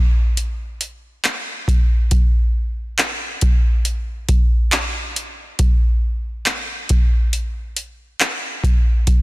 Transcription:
0.37 closed hi-hat
0.81 closed hi-hat
1.25 clap, closed hi-hat
1.68 kick, closed hi-hat
2.11 kick, closed hi-hat
2.99 clap, closed hi-hat
3.41 kick, closed hi-hat
3.85 closed hi-hat
4.29 kick, closed hi-hat
4.72 clap, closed hi-hat
5.16 closed hi-hat
5.59 kick, closed hi-hat
6.46 clap, closed hi-hat
6.89 kick, closed hi-hat
7.33 closed hi-hat
7.77 closed hi-hat
8.20 clap, closed hi-hat
8.64 kick, closed hi-hat
9.07 kick, closed hi-hat

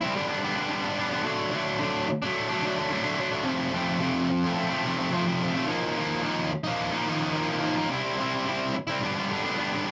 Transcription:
0.01 G3 C4 E4
0.14 G2 D3 G3 B3 D4
0.28 G3 B3 D4
0.42 D3 G3 B3 D4
0.55 G3 B3 D4
0.69 G2 D3 G3 B3 D4
0.82 G3 B3 D4
0.97 D3 G3 B3 D4
1.10 G3 B3 D4
1.23 D3 F#3 A3 D4
1.52 D3 F#3 A3 D4
1.79 D3 F#3 A3 D4
2.08 muted distorted electric guitar stroke
2.22 F#3 A3 D4
2.49 F#3 A3 D4
2.62 D3 F#3 A3
2.66 D4
2.76 F#3 A3 D4
2.90 D3 F#3 A3 D4
3.04 F#3 A3 D4
3.17 D3 F#3 A3 D4
3.31 A3 D4
3.35 F#3
3.43 F2 C3 F3 A3 C4
3.72 C3 F3 A3 C4
4.00 F2 C3 F3 A3 C4
4.30 muted distorted electric guitar stroke
4.44 F3 A3 C4
4.69 F3 A3 C4
4.84 C3 F3 A3 C4
4.98 F3 A3 C4
5.11 F2 C3 F3 A3 C4
5.26 F3 A3 C4
5.40 C3 F3 A3 C4
5.54 F3 A3 C4
5.67 D#3 F3 A#3 D#4
5.95 D#3 F3 A#3 D#4
6.22 D#3 F3 A#3 D#4
6.51 muted distorted electric guitar stroke
6.64 F3 A#3 D#4
6.91 F3 A#3 D#4
7.06 D#3 F3 A#3 D#4
7.20 F3 A#3 D#4
7.33 D#3 F3 A#3 D#4
7.48 F3 A#3 D#4
7.61 D#3 F3 A#3 D#4
7.75 F3 A#3 D#4
7.90 C3 G3 C4 E4
8.18 C3 G3 C4 E4
8.45 C3 G3 C4 E4
8.74 muted distorted electric guitar stroke
8.87 C4 E4
8.91 G3
9.01 G2 D3 G3 B3 D4
9.16 G3 B3 D4
9.30 D3 G3 B3 D4
9.43 G3 B3 D4
9.57 G2 D3 G3 B3 D4
9.71 G3 B3 D4
9.85 D3 G3 B3

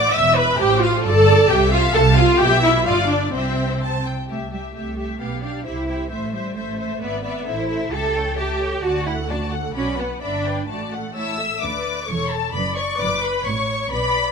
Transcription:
Already playing: D5 F#5 D6
0.15 E1 E2 E5 E6
0.37 B4 B5
0.60 A1 A2 G4 C5 G5
0.82 F4 F5
1.04 G1 G2 A4 D5 A5
1.49 C2 C3 G4 E5 G5
1.72 F4 F5
1.95 C2 C3 A4 F5 A5
2.17 F4 F5
2.40 B1 B2 G4 E5 G5
2.63 E4 E5
2.86 G1 G2 F4 D5 F5
3.10 D4 D5
3.34 C2 C3 C4 C5 E5
3.82 A5
4.06 G5
4.29 C2 A3 G4 E5
4.51 G3 G4 E5
4.74 C2 A3 G4 E5
4.97 G4 E5
5.19 B1 B3 G4 F5
5.42 D4 G4 F5
5.65 C2 E4 G4 C5 E5
5.88 G4 C5 E5
6.11 A1 A3 C5 E5
6.33 G3 C5 E5
6.56 A1 A3 C5 E5
6.79 C5 E5
7.01 G#1 B3 B4 D5 E5
7.23 B3 B4 D5 E5
7.46 A1 E4 A4 C5 E5
7.69 A4 C5 E5
7.91 C#2 G4 A4 E5 A5
8.14 A4 C#5 G5
8.37 G4 E5 A5
8.60 A4 C#5 G5
8.82 D2 F#4 D5 A5
9.06 E4 A4 F#5
9.29 D4 F#4 D5 A5
9.52 A4 F#5
9.75 B1 C#4 F#4 D5 B5
9.98 B3 B4 F#5
10.21 G1 D4 D5 E5 B5
10.45 B4 D5 G5
10.68 A1 A3 F#4 D5 A5
10.91 A4 F#5
11.15 E4 C#5 E5 A5 E6
11.38 A4 E5
11.61 D2 D3 B4 D5 D6
12.08 E1 E2 A4 C#5 C#6
12.31 A4 A5
12.52 F#1 F#2 B4 D5 B5
12.76 C#5 C#6
12.99 F#1 F#2 B4 D5 D6
13.23 B4 B5
13.45 A1 A2 C#5 C#6
13.90 B1 B2 B4 D5 B5

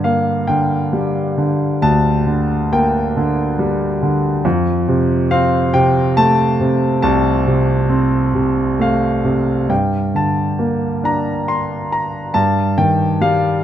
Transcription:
Already playing: G2 D3
0.04 A#3 F5
0.47 D3 G5
0.93 G3
1.38 D3
1.82 D2 A5
2.26 D3
2.72 A#3 G5
3.17 D3
3.59 G3
4.03 D3
4.45 F2
4.88 C3
5.31 C4 F5
5.74 C3 G5
6.17 A3 A5
6.61 C3
7.02 C2 A5
7.47 C3
7.89 C4
8.34 C3
8.79 A3 F5
9.25 C3
9.69 G2 G5
10.15 D3 A5
10.59 A#3
11.04 D4 A#5
11.48 C6
11.92 A#5
12.34 G2 A5
12.78 D#3 G5
13.21 G3 F5

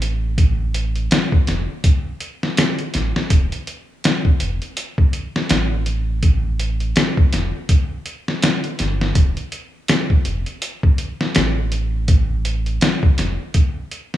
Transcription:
Already playing: A1
0.02 closed hi-hat
0.38 kick, closed hi-hat
0.74 closed hi-hat
0.96 closed hi-hat
1.11 snare, closed hi-hat
1.32 kick
1.47 F1, snare, closed hi-hat
1.84 kick, closed hi-hat
2.20 closed hi-hat
2.43 snare
2.57 snare, closed hi-hat
2.79 closed hi-hat
2.94 A1, snare, closed hi-hat
3.16 snare
3.30 D1, kick, closed hi-hat
3.52 closed hi-hat
3.67 closed hi-hat
4.04 snare, closed hi-hat
4.25 kick
4.40 F1, closed hi-hat
4.62 closed hi-hat
4.77 closed hi-hat
4.98 kick
5.13 closed hi-hat
5.36 snare
5.49 A1, snare, closed hi-hat
5.86 closed hi-hat
6.23 kick, closed hi-hat
6.60 closed hi-hat
6.80 closed hi-hat
6.96 snare, closed hi-hat
7.17 kick
7.33 F1, snare, closed hi-hat
7.69 kick, closed hi-hat
8.06 closed hi-hat
8.28 snare
8.42 snare, closed hi-hat
8.64 closed hi-hat
8.79 G1, snare, closed hi-hat
9.01 snare
9.15 D1, kick, closed hi-hat
9.37 closed hi-hat
9.52 closed hi-hat
9.88 snare, closed hi-hat
10.10 kick
10.25 F1, closed hi-hat
10.46 closed hi-hat
10.62 closed hi-hat
10.83 kick
10.98 closed hi-hat
11.21 snare
11.35 A1, snare, closed hi-hat
11.72 closed hi-hat
12.08 kick, closed hi-hat
12.45 closed hi-hat
12.66 closed hi-hat
12.81 snare, closed hi-hat
13.03 kick
13.18 F1, snare, closed hi-hat
13.54 kick, closed hi-hat
13.91 closed hi-hat
14.14 snare

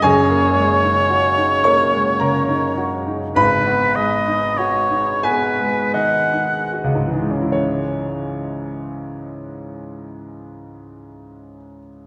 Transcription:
0.02 F#1 F#2 G#4 C#5 G#5
0.30 A#3
0.56 G#3
0.83 D#4
1.10 F#4
1.37 D#4
1.64 A#3 C#5 C#6
1.93 G#3
2.20 C#3 A#4 A#5
2.49 D#4
2.78 F#4
3.07 D#4
3.36 G#1 G#2 B4 B5
3.67 B3
3.95 G#3 D#5
4.28 D#4
4.58 F#4 C#5
4.91 D#4
5.23 B3 G#4 B4 G#5
5.59 G#3
5.94 D#3 D#4 D#5 F#5
6.33 D#4
6.73 F#4
6.84 C#2
6.95 G#2
7.07 E3
7.14 D#4
7.19 G#3
7.30 C#4
7.42 E4
7.52 C#5

